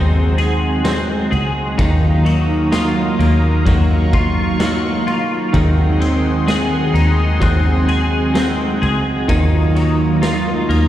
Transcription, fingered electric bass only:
0.00 1.28 D#2 loud
1.32 1.77 C#2 loud
1.79 3.16 D#2 loud
3.19 3.64 D#2 loud
3.66 5.07 D#2 loud
5.07 5.52 C#2 loud
5.54 6.91 D#2 loud
6.94 7.39 D#2 loud
7.42 8.78 D#2 loud
8.82 9.27 C#2 loud
9.29 10.66 D#2 loud
10.69 10.88 D#2 loud

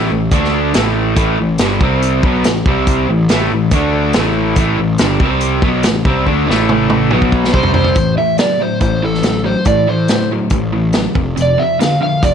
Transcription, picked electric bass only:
0.12 0.31 A1 medium
0.32 0.71 D2 medium
0.76 1.15 A1 medium
1.16 1.36 A1 medium
1.40 1.59 A1 medium
1.61 1.80 G1 medium
1.81 2.20 C2 medium
2.24 2.43 B1 medium
2.46 2.65 A1 medium
2.66 3.06 C2 medium
3.09 3.28 A1 medium
3.31 3.50 A1 medium
3.52 3.71 A1 medium
3.72 4.11 D2 medium
4.16 4.55 A1 medium
4.57 4.77 A1 medium
4.79 4.99 A1 medium
5.02 5.20 G1 medium
5.21 5.60 C2 medium
5.62 5.83 B1 medium
5.86 6.05 A1 medium
6.06 6.26 C2 medium
6.27 6.47 D2 medium
6.49 7.09 A1 medium
7.13 7.52 B1 medium
7.54 7.94 C2 medium
7.97 8.15 A1 medium
8.81 9.54 A1 medium
9.67 10.39 A2 medium
10.51 11.06 A1 medium
11.16 11.34 F1 medium
11.37 11.56 F1 medium
12.23 12.34 F1 medium

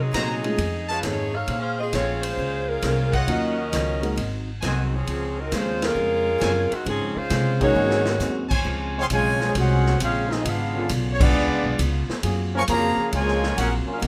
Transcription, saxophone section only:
0.01 0.59 F#3 medium
0.01 0.59 C4 medium
0.01 0.89 D#4 medium
0.01 0.89 G#4 medium
0.88 1.03 G#3 medium
0.88 1.03 C#4 medium
0.88 1.03 F4 medium
0.88 1.03 B4 medium
1.03 1.33 A3 medium
1.03 1.32 D#4 medium
1.03 1.32 G#4 medium
1.03 1.32 C#5 medium
1.33 1.58 D#4 medium
1.33 1.58 A4 medium
1.33 1.58 C#5 medium
1.33 1.58 F5 medium
1.58 1.76 C#4 medium
1.58 1.76 G#4 medium
1.58 1.76 C5 medium
1.58 1.77 F5 medium
1.78 1.92 C4 medium
1.78 1.91 F4 medium
1.78 1.92 G#4 medium
1.78 1.92 D#5 medium
1.93 2.20 G#3 medium
1.93 2.20 C4 medium
1.93 2.20 F4 medium
1.93 2.20 C#5 loud
2.21 2.67 G#3 medium
2.21 2.67 C#4 medium
2.21 2.67 F4 medium
2.21 2.67 C5 loud
2.67 3.12 G#3 medium
2.67 3.12 C#4 medium
2.67 3.12 F4 medium
2.67 3.12 A#4 loud
3.14 3.27 G#3 medium
3.14 3.27 C4 medium
3.14 3.28 F4 medium
3.14 3.27 C#5 medium
3.28 4.37 C#4 medium
3.28 4.38 F#4 medium
3.28 4.37 A#4 medium
3.28 4.38 D#5 medium
4.64 4.91 D#3 medium
4.64 4.91 G#3 medium
4.64 4.91 C4 medium
4.64 4.91 F#4 medium
4.92 5.37 F3 medium
4.92 5.37 C4 medium
4.92 5.37 C#4 medium
4.92 5.37 G#4 medium
5.38 5.52 F#3 medium
5.38 5.52 C4 medium
5.38 5.52 D#4 medium
5.38 5.52 A#4 medium
5.52 5.82 G#3 medium
5.52 5.82 C#4 medium
5.52 5.82 F4 medium
5.52 5.82 C5 loud
5.83 6.71 G#3 loud
5.83 6.72 C#4 loud
5.83 6.72 F4 medium
5.83 6.72 A#4 loud
6.72 6.86 D#3 medium
6.72 6.86 G#3 medium
6.72 6.86 C4 medium
6.72 6.86 F#4 medium
6.87 7.15 F3 medium
6.87 7.15 C4 medium
6.87 7.15 C#4 medium
6.87 7.15 G#4 loud
7.16 7.61 G#3 loud
7.16 7.61 C#4 loud
7.16 7.61 F4 medium
7.16 7.61 C5 loud
7.62 8.47 G#3 medium
7.62 8.47 D#4 loud
7.62 8.47 F#4 medium
7.62 8.47 C#5 loud

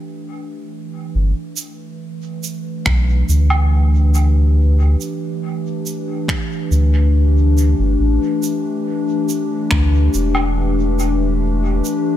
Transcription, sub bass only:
1.15 1.34 G1 loud
2.86 3.24 B1 medium
3.29 4.96 D2 loud
6.71 7.75 D2 medium
7.79 7.97 G1 medium
8.00 8.19 A1 loud
9.71 10.09 D2 medium
10.14 11.82 E1 loud

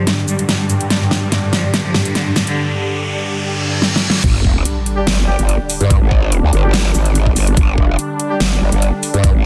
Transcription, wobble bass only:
4.24 4.43 G1 loud
4.45 4.64 F1 medium
5.07 5.26 G1 loud
5.28 5.37 G1 loud
5.39 5.58 G1 loud
5.81 6.00 G2 medium
6.01 6.41 G#1 medium
6.43 6.51 D2 loud
6.53 6.93 G1 loud
6.95 7.35 G#1 medium
7.36 7.56 G1 loud
7.57 7.76 G1 loud
7.78 7.97 F1 medium
8.40 8.60 G1 loud
8.61 8.70 G1 loud
8.72 8.91 G1 loud
9.14 9.33 G2 loud
9.35 9.46 G#1 loud

